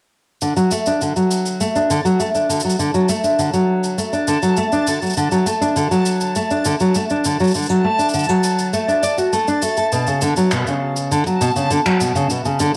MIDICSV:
0, 0, Header, 1, 4, 480
1, 0, Start_track
1, 0, Key_signature, 2, "major"
1, 0, Tempo, 594059
1, 339, Time_signature, 4, 2, 24, 8
1, 10315, End_track
2, 0, Start_track
2, 0, Title_t, "Synth texture"
2, 0, Program_c, 0, 99
2, 336, Note_on_c, 0, 81, 75
2, 10315, Note_off_c, 0, 81, 0
2, 10315, End_track
3, 0, Start_track
3, 0, Title_t, "Nylon-string guitar"
3, 0, Program_c, 1, 24
3, 338, Note_on_c, 1, 50, 64
3, 447, Note_off_c, 1, 50, 0
3, 457, Note_on_c, 1, 54, 65
3, 566, Note_off_c, 1, 54, 0
3, 578, Note_on_c, 1, 57, 89
3, 687, Note_off_c, 1, 57, 0
3, 701, Note_on_c, 1, 62, 56
3, 808, Note_off_c, 1, 62, 0
3, 821, Note_on_c, 1, 50, 61
3, 928, Note_off_c, 1, 50, 0
3, 938, Note_on_c, 1, 54, 60
3, 1287, Note_off_c, 1, 54, 0
3, 1298, Note_on_c, 1, 57, 71
3, 1407, Note_off_c, 1, 57, 0
3, 1419, Note_on_c, 1, 62, 66
3, 1527, Note_off_c, 1, 62, 0
3, 1538, Note_on_c, 1, 50, 82
3, 1607, Note_off_c, 1, 50, 0
3, 1656, Note_on_c, 1, 54, 65
3, 1766, Note_off_c, 1, 54, 0
3, 1776, Note_on_c, 1, 57, 87
3, 1846, Note_off_c, 1, 57, 0
3, 1897, Note_on_c, 1, 62, 58
3, 2006, Note_off_c, 1, 62, 0
3, 2015, Note_on_c, 1, 50, 58
3, 2125, Note_off_c, 1, 50, 0
3, 2138, Note_on_c, 1, 54, 58
3, 2247, Note_off_c, 1, 54, 0
3, 2257, Note_on_c, 1, 50, 64
3, 2366, Note_off_c, 1, 50, 0
3, 2378, Note_on_c, 1, 54, 64
3, 2487, Note_off_c, 1, 54, 0
3, 2497, Note_on_c, 1, 57, 84
3, 2606, Note_off_c, 1, 57, 0
3, 2616, Note_on_c, 1, 62, 60
3, 2726, Note_off_c, 1, 62, 0
3, 2736, Note_on_c, 1, 50, 66
3, 2846, Note_off_c, 1, 50, 0
3, 2857, Note_on_c, 1, 54, 65
3, 3206, Note_off_c, 1, 54, 0
3, 3216, Note_on_c, 1, 57, 67
3, 3326, Note_off_c, 1, 57, 0
3, 3336, Note_on_c, 1, 62, 67
3, 3446, Note_off_c, 1, 62, 0
3, 3455, Note_on_c, 1, 50, 86
3, 3526, Note_off_c, 1, 50, 0
3, 3576, Note_on_c, 1, 54, 66
3, 3686, Note_off_c, 1, 54, 0
3, 3697, Note_on_c, 1, 57, 85
3, 3766, Note_off_c, 1, 57, 0
3, 3818, Note_on_c, 1, 62, 67
3, 3927, Note_off_c, 1, 62, 0
3, 3938, Note_on_c, 1, 50, 59
3, 4047, Note_off_c, 1, 50, 0
3, 4059, Note_on_c, 1, 54, 57
3, 4167, Note_off_c, 1, 54, 0
3, 4178, Note_on_c, 1, 50, 69
3, 4287, Note_off_c, 1, 50, 0
3, 4297, Note_on_c, 1, 54, 68
3, 4406, Note_off_c, 1, 54, 0
3, 4414, Note_on_c, 1, 57, 87
3, 4525, Note_off_c, 1, 57, 0
3, 4536, Note_on_c, 1, 62, 62
3, 4646, Note_off_c, 1, 62, 0
3, 4656, Note_on_c, 1, 50, 69
3, 4766, Note_off_c, 1, 50, 0
3, 4777, Note_on_c, 1, 54, 67
3, 5126, Note_off_c, 1, 54, 0
3, 5139, Note_on_c, 1, 57, 73
3, 5248, Note_off_c, 1, 57, 0
3, 5260, Note_on_c, 1, 62, 66
3, 5368, Note_off_c, 1, 62, 0
3, 5377, Note_on_c, 1, 50, 85
3, 5447, Note_off_c, 1, 50, 0
3, 5498, Note_on_c, 1, 54, 69
3, 5607, Note_off_c, 1, 54, 0
3, 5621, Note_on_c, 1, 57, 87
3, 5688, Note_off_c, 1, 57, 0
3, 5742, Note_on_c, 1, 62, 65
3, 5849, Note_off_c, 1, 62, 0
3, 5861, Note_on_c, 1, 50, 62
3, 5968, Note_off_c, 1, 50, 0
3, 5981, Note_on_c, 1, 54, 65
3, 6088, Note_off_c, 1, 54, 0
3, 6101, Note_on_c, 1, 50, 72
3, 6208, Note_off_c, 1, 50, 0
3, 6220, Note_on_c, 1, 54, 65
3, 6328, Note_off_c, 1, 54, 0
3, 6338, Note_on_c, 1, 57, 83
3, 6447, Note_off_c, 1, 57, 0
3, 6455, Note_on_c, 1, 62, 57
3, 6565, Note_off_c, 1, 62, 0
3, 6577, Note_on_c, 1, 50, 63
3, 6686, Note_off_c, 1, 50, 0
3, 6699, Note_on_c, 1, 54, 65
3, 7047, Note_off_c, 1, 54, 0
3, 7057, Note_on_c, 1, 57, 74
3, 7166, Note_off_c, 1, 57, 0
3, 7176, Note_on_c, 1, 62, 67
3, 7286, Note_off_c, 1, 62, 0
3, 7296, Note_on_c, 1, 74, 68
3, 7406, Note_off_c, 1, 74, 0
3, 7416, Note_on_c, 1, 66, 65
3, 7526, Note_off_c, 1, 66, 0
3, 7537, Note_on_c, 1, 57, 68
3, 7646, Note_off_c, 1, 57, 0
3, 7659, Note_on_c, 1, 62, 61
3, 7767, Note_off_c, 1, 62, 0
3, 7777, Note_on_c, 1, 57, 61
3, 7886, Note_off_c, 1, 57, 0
3, 7898, Note_on_c, 1, 69, 59
3, 8007, Note_off_c, 1, 69, 0
3, 8018, Note_on_c, 1, 47, 73
3, 8127, Note_off_c, 1, 47, 0
3, 8140, Note_on_c, 1, 49, 61
3, 8248, Note_off_c, 1, 49, 0
3, 8257, Note_on_c, 1, 50, 86
3, 8366, Note_off_c, 1, 50, 0
3, 8381, Note_on_c, 1, 54, 62
3, 8488, Note_off_c, 1, 54, 0
3, 8502, Note_on_c, 1, 47, 64
3, 8609, Note_off_c, 1, 47, 0
3, 8624, Note_on_c, 1, 49, 61
3, 8970, Note_off_c, 1, 49, 0
3, 8980, Note_on_c, 1, 50, 76
3, 9088, Note_off_c, 1, 50, 0
3, 9101, Note_on_c, 1, 54, 69
3, 9209, Note_off_c, 1, 54, 0
3, 9219, Note_on_c, 1, 47, 87
3, 9288, Note_off_c, 1, 47, 0
3, 9339, Note_on_c, 1, 49, 68
3, 9447, Note_off_c, 1, 49, 0
3, 9459, Note_on_c, 1, 50, 89
3, 9528, Note_off_c, 1, 50, 0
3, 9580, Note_on_c, 1, 54, 68
3, 9688, Note_off_c, 1, 54, 0
3, 9700, Note_on_c, 1, 47, 63
3, 9808, Note_off_c, 1, 47, 0
3, 9820, Note_on_c, 1, 49, 83
3, 9928, Note_off_c, 1, 49, 0
3, 9942, Note_on_c, 1, 47, 72
3, 10049, Note_off_c, 1, 47, 0
3, 10060, Note_on_c, 1, 49, 66
3, 10168, Note_off_c, 1, 49, 0
3, 10181, Note_on_c, 1, 50, 87
3, 10288, Note_off_c, 1, 50, 0
3, 10315, End_track
4, 0, Start_track
4, 0, Title_t, "Drums"
4, 336, Note_on_c, 9, 82, 34
4, 417, Note_off_c, 9, 82, 0
4, 458, Note_on_c, 9, 82, 19
4, 539, Note_off_c, 9, 82, 0
4, 575, Note_on_c, 9, 82, 58
4, 655, Note_off_c, 9, 82, 0
4, 696, Note_on_c, 9, 82, 28
4, 777, Note_off_c, 9, 82, 0
4, 818, Note_on_c, 9, 82, 34
4, 899, Note_off_c, 9, 82, 0
4, 939, Note_on_c, 9, 82, 19
4, 1019, Note_off_c, 9, 82, 0
4, 1058, Note_on_c, 9, 82, 60
4, 1139, Note_off_c, 9, 82, 0
4, 1178, Note_on_c, 9, 82, 29
4, 1259, Note_off_c, 9, 82, 0
4, 1298, Note_on_c, 9, 82, 35
4, 1379, Note_off_c, 9, 82, 0
4, 1420, Note_on_c, 9, 82, 18
4, 1501, Note_off_c, 9, 82, 0
4, 1539, Note_on_c, 9, 82, 59
4, 1620, Note_off_c, 9, 82, 0
4, 1660, Note_on_c, 9, 82, 25
4, 1740, Note_off_c, 9, 82, 0
4, 1777, Note_on_c, 9, 82, 38
4, 1858, Note_off_c, 9, 82, 0
4, 1898, Note_on_c, 9, 82, 19
4, 1979, Note_off_c, 9, 82, 0
4, 2021, Note_on_c, 9, 82, 62
4, 2102, Note_off_c, 9, 82, 0
4, 2102, Note_on_c, 9, 82, 53
4, 2181, Note_off_c, 9, 82, 0
4, 2181, Note_on_c, 9, 82, 38
4, 2260, Note_off_c, 9, 82, 0
4, 2260, Note_on_c, 9, 82, 36
4, 2340, Note_off_c, 9, 82, 0
4, 2378, Note_on_c, 9, 82, 20
4, 2459, Note_off_c, 9, 82, 0
4, 2497, Note_on_c, 9, 82, 63
4, 2577, Note_off_c, 9, 82, 0
4, 2619, Note_on_c, 9, 82, 31
4, 2700, Note_off_c, 9, 82, 0
4, 2741, Note_on_c, 9, 82, 35
4, 2822, Note_off_c, 9, 82, 0
4, 2858, Note_on_c, 9, 82, 20
4, 2939, Note_off_c, 9, 82, 0
4, 3100, Note_on_c, 9, 82, 31
4, 3181, Note_off_c, 9, 82, 0
4, 3220, Note_on_c, 9, 82, 43
4, 3301, Note_off_c, 9, 82, 0
4, 3337, Note_on_c, 9, 82, 18
4, 3418, Note_off_c, 9, 82, 0
4, 3456, Note_on_c, 9, 82, 63
4, 3537, Note_off_c, 9, 82, 0
4, 3575, Note_on_c, 9, 82, 30
4, 3656, Note_off_c, 9, 82, 0
4, 3691, Note_on_c, 9, 82, 38
4, 3772, Note_off_c, 9, 82, 0
4, 3816, Note_on_c, 9, 82, 18
4, 3897, Note_off_c, 9, 82, 0
4, 3936, Note_on_c, 9, 82, 65
4, 4017, Note_off_c, 9, 82, 0
4, 4056, Note_on_c, 9, 82, 13
4, 4090, Note_off_c, 9, 82, 0
4, 4090, Note_on_c, 9, 82, 15
4, 4120, Note_off_c, 9, 82, 0
4, 4120, Note_on_c, 9, 82, 18
4, 4149, Note_off_c, 9, 82, 0
4, 4149, Note_on_c, 9, 82, 24
4, 4178, Note_off_c, 9, 82, 0
4, 4178, Note_on_c, 9, 82, 37
4, 4259, Note_off_c, 9, 82, 0
4, 4296, Note_on_c, 9, 82, 21
4, 4377, Note_off_c, 9, 82, 0
4, 4417, Note_on_c, 9, 82, 63
4, 4497, Note_off_c, 9, 82, 0
4, 4540, Note_on_c, 9, 82, 31
4, 4621, Note_off_c, 9, 82, 0
4, 4657, Note_on_c, 9, 82, 36
4, 4738, Note_off_c, 9, 82, 0
4, 4779, Note_on_c, 9, 82, 20
4, 4860, Note_off_c, 9, 82, 0
4, 4894, Note_on_c, 9, 82, 68
4, 4975, Note_off_c, 9, 82, 0
4, 5016, Note_on_c, 9, 82, 31
4, 5096, Note_off_c, 9, 82, 0
4, 5135, Note_on_c, 9, 82, 43
4, 5215, Note_off_c, 9, 82, 0
4, 5257, Note_on_c, 9, 82, 20
4, 5338, Note_off_c, 9, 82, 0
4, 5374, Note_on_c, 9, 82, 69
4, 5454, Note_off_c, 9, 82, 0
4, 5494, Note_on_c, 9, 82, 29
4, 5575, Note_off_c, 9, 82, 0
4, 5614, Note_on_c, 9, 82, 38
4, 5694, Note_off_c, 9, 82, 0
4, 5736, Note_on_c, 9, 82, 20
4, 5816, Note_off_c, 9, 82, 0
4, 5856, Note_on_c, 9, 82, 66
4, 5937, Note_off_c, 9, 82, 0
4, 5978, Note_on_c, 9, 82, 12
4, 6008, Note_off_c, 9, 82, 0
4, 6008, Note_on_c, 9, 82, 15
4, 6039, Note_off_c, 9, 82, 0
4, 6039, Note_on_c, 9, 82, 17
4, 6068, Note_off_c, 9, 82, 0
4, 6068, Note_on_c, 9, 82, 17
4, 6096, Note_off_c, 9, 82, 0
4, 6096, Note_on_c, 9, 82, 39
4, 6127, Note_off_c, 9, 82, 0
4, 6127, Note_on_c, 9, 82, 22
4, 6158, Note_off_c, 9, 82, 0
4, 6158, Note_on_c, 9, 82, 24
4, 6187, Note_off_c, 9, 82, 0
4, 6187, Note_on_c, 9, 82, 24
4, 6216, Note_off_c, 9, 82, 0
4, 6216, Note_on_c, 9, 82, 21
4, 6297, Note_off_c, 9, 82, 0
4, 6458, Note_on_c, 9, 82, 30
4, 6537, Note_off_c, 9, 82, 0
4, 6537, Note_on_c, 9, 82, 24
4, 6576, Note_off_c, 9, 82, 0
4, 6576, Note_on_c, 9, 82, 36
4, 6616, Note_off_c, 9, 82, 0
4, 6616, Note_on_c, 9, 82, 30
4, 6656, Note_off_c, 9, 82, 0
4, 6656, Note_on_c, 9, 82, 25
4, 6698, Note_off_c, 9, 82, 0
4, 6698, Note_on_c, 9, 82, 21
4, 6779, Note_off_c, 9, 82, 0
4, 6816, Note_on_c, 9, 82, 70
4, 6896, Note_off_c, 9, 82, 0
4, 6939, Note_on_c, 9, 82, 29
4, 7019, Note_off_c, 9, 82, 0
4, 7058, Note_on_c, 9, 82, 41
4, 7139, Note_off_c, 9, 82, 0
4, 7181, Note_on_c, 9, 82, 20
4, 7262, Note_off_c, 9, 82, 0
4, 7298, Note_on_c, 9, 82, 71
4, 7379, Note_off_c, 9, 82, 0
4, 7419, Note_on_c, 9, 82, 28
4, 7500, Note_off_c, 9, 82, 0
4, 7539, Note_on_c, 9, 82, 41
4, 7619, Note_off_c, 9, 82, 0
4, 7658, Note_on_c, 9, 82, 20
4, 7739, Note_off_c, 9, 82, 0
4, 7774, Note_on_c, 9, 82, 69
4, 7855, Note_off_c, 9, 82, 0
4, 7894, Note_on_c, 9, 82, 26
4, 7975, Note_off_c, 9, 82, 0
4, 8017, Note_on_c, 9, 82, 36
4, 8098, Note_off_c, 9, 82, 0
4, 8136, Note_on_c, 9, 82, 21
4, 8217, Note_off_c, 9, 82, 0
4, 8254, Note_on_c, 9, 82, 61
4, 8335, Note_off_c, 9, 82, 0
4, 8376, Note_on_c, 9, 82, 32
4, 8456, Note_off_c, 9, 82, 0
4, 8493, Note_on_c, 9, 26, 62
4, 8494, Note_on_c, 9, 82, 37
4, 8574, Note_off_c, 9, 26, 0
4, 8575, Note_off_c, 9, 82, 0
4, 8619, Note_on_c, 9, 82, 20
4, 8700, Note_off_c, 9, 82, 0
4, 8859, Note_on_c, 9, 82, 32
4, 8940, Note_off_c, 9, 82, 0
4, 8983, Note_on_c, 9, 82, 43
4, 9063, Note_off_c, 9, 82, 0
4, 9105, Note_on_c, 9, 82, 19
4, 9186, Note_off_c, 9, 82, 0
4, 9223, Note_on_c, 9, 82, 62
4, 9303, Note_off_c, 9, 82, 0
4, 9343, Note_on_c, 9, 82, 29
4, 9423, Note_off_c, 9, 82, 0
4, 9461, Note_on_c, 9, 82, 39
4, 9542, Note_off_c, 9, 82, 0
4, 9582, Note_on_c, 9, 26, 70
4, 9582, Note_on_c, 9, 82, 20
4, 9663, Note_off_c, 9, 26, 0
4, 9663, Note_off_c, 9, 82, 0
4, 9700, Note_on_c, 9, 82, 66
4, 9781, Note_off_c, 9, 82, 0
4, 9822, Note_on_c, 9, 82, 30
4, 9903, Note_off_c, 9, 82, 0
4, 9939, Note_on_c, 9, 82, 35
4, 10020, Note_off_c, 9, 82, 0
4, 10062, Note_on_c, 9, 82, 20
4, 10143, Note_off_c, 9, 82, 0
4, 10178, Note_on_c, 9, 82, 60
4, 10259, Note_off_c, 9, 82, 0
4, 10315, End_track
0, 0, End_of_file